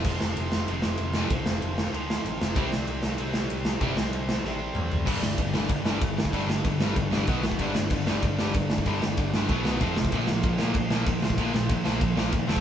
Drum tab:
CC |x---------------|----------------|----------------|----------------|
RD |----x---x---x---|x---x---x---x---|x---x---x---x---|x---x-----------|
SD |--o---o---o---o-|--o---o---o---o-|--o---o---o---o-|--o---o-o-------|
T2 |----------------|----------------|----------------|------------o---|
FT |----------------|----------------|----------------|--------------o-|
BD |o---------------|o---------------|o---------------|o---------------|

CC |x---x---x---x---|x---x---x---x---|x---x---x---x---|x---x---x---x---|
RD |----------------|----------------|----------------|----------------|
SD |--o---o---o---o-|--o---o---o---o-|--o---o---o---o-|--o---o---o---o-|
T2 |----------------|----------------|----------------|----------------|
FT |----------------|----------------|----------------|----------------|
BD |o---o---o---o--o|o---o---o---o--o|o---o---o---o--o|o---o---o---o--o|

CC |x---x---x---x---|x---x---x---x---|
RD |----------------|----------------|
SD |--o---o---o---o-|--o---o---o---o-|
T2 |----------------|----------------|
FT |----------------|----------------|
BD |o---o---o---o--o|o---o---o---o--o|